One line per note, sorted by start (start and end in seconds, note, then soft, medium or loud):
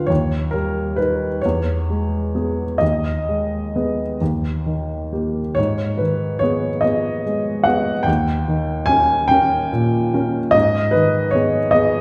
0.00 0.12 D3 soft
0.00 0.12 G#3 soft
0.00 0.12 F4 soft
0.00 0.12 B4 soft
0.00 0.12 F5 medium
0.07 1.39 D#2 soft
0.07 0.52 C#5 medium
0.51 1.25 G3 soft
0.51 0.97 A#4 medium
0.96 1.40 D#4 soft
0.96 1.40 A#4 soft
0.96 1.42 B4 medium
1.42 2.77 E2 soft
1.42 2.80 C#5 medium
1.90 2.62 G#3 soft
2.35 2.77 B3 soft
2.35 2.78 G#4 soft
2.78 4.16 D#2 soft
2.78 4.19 D#5 medium
3.29 4.02 G#3 soft
3.76 4.17 B3 soft
3.76 4.17 G#4 soft
4.21 5.54 D#2 soft
4.66 5.40 D#3 soft
5.13 5.54 A#3 soft
5.13 5.54 G4 soft
5.55 8.04 G#2 soft
5.55 5.99 C#5 medium
5.97 6.69 D#3 soft
5.97 6.42 B4 soft
6.39 6.81 B3 soft
6.39 6.83 C#5 medium
6.43 6.81 G#4 soft
6.81 7.22 B3 soft
6.81 7.65 D#5 medium
6.85 7.22 G#4 soft
7.26 7.91 G#3 soft
7.64 8.04 B3 soft
7.64 8.04 G#4 soft
7.64 8.06 F#5 medium
8.03 10.50 D#2 medium
8.03 8.87 G5 medium
8.48 9.13 D#3 soft
8.86 9.26 C#4 soft
8.86 9.28 G#5 medium
8.90 9.26 A#4 soft
9.28 9.68 C#4 soft
9.28 10.53 G5 medium
9.32 9.69 A#4 soft
9.73 10.39 A#2 soft
10.14 10.51 C#4 soft
10.14 10.50 A#4 soft
10.51 12.01 G#2 medium
10.51 10.92 D#5 medium
10.91 11.33 B4 medium
10.95 11.59 D#3 soft
11.31 11.71 B3 soft
11.31 11.73 C#5 medium
11.35 11.71 G#4 soft
11.71 12.01 B3 soft
11.71 12.01 G#4 soft
11.71 12.01 D#5 medium